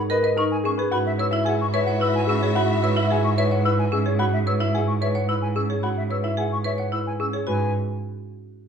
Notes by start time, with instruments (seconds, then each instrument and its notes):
Already playing: cello G#2
0.10 marimba A#4, grand piano B4, flute D#5
0.23 marimba B4, grand piano D#5
0.37 marimba D#4, grand piano A#4, flute C#6
0.51 flute G#5
0.64 marimba C#4, grand piano G#4, flute C#6
0.78 marimba G#4, grand piano B4
0.91 cello G#2, alto flute E4, marimba F#4, string section F#4 E5, grand piano F#5, flute B5
1.06 flute E5
1.18 marimba B4, grand piano C#5, flute E6
1.31 marimba E4, grand piano E5
1.45 marimba G#4, flute F#5, grand piano G#5
1.61 flute C#6
1.74 marimba B4, grand piano C#5, flute E5
1.87 marimba C#5, grand piano F#5
1.99 marimba E4, grand piano B4, flute E6
2.15 flute G#5
2.27 marimba C#4, grand piano G#4, flute E6
2.42 marimba G#4, grand piano C#5
2.55 marimba F#4, grand piano F#5, flute B5
2.70 flute E5
2.83 marimba B4, grand piano C#5, flute E6
2.97 marimba E4, grand piano E5
3.10 marimba G#4, flute F#5, grand piano G#5
3.24 flute C#6
3.38 marimba B4, grand piano C#5, flute E5
3.51 marimba C#5, grand piano F#5
3.65 marimba E4, grand piano B4, flute E6
3.79 flute G#5
3.92 marimba C#4, grand piano G#4, flute E6
4.06 marimba G#4, grand piano C#5
4.19 marimba F#4, grand piano F#5, flute B5
4.33 flute E5
4.46 marimba B4, grand piano C#5, flute E6
4.60 marimba E4, grand piano E5
4.74 marimba G#4, flute F#5, grand piano G#5
4.87 flute C#6
5.01 marimba B4, grand piano C#5, flute E5
5.15 marimba C#5, grand piano F#5
5.29 marimba E4, grand piano B4, flute E6
5.42 flute G#5
5.56 marimba C#4, grand piano G#4, flute E6
5.69 marimba G#4, grand piano C#5
5.83 marimba F#4, grand piano F#5, flute B5
5.97 flute E5
6.10 marimba B4, grand piano C#5, flute E6
6.24 marimba E4, grand piano E5
6.37 marimba G#4, flute F#5, grand piano G#5
6.52 flute C#6
6.64 marimba B4, grand piano C#5, flute E5
6.78 marimba C#5, grand piano F#5
6.92 marimba E4, grand piano B4, flute E6
7.07 flute G#5
7.20 marimba C#4, grand piano G#4, flute E6
7.33 marimba G#4, grand piano C#5
7.47 cello G#2, marimba F#4, grand piano B4, flute G#5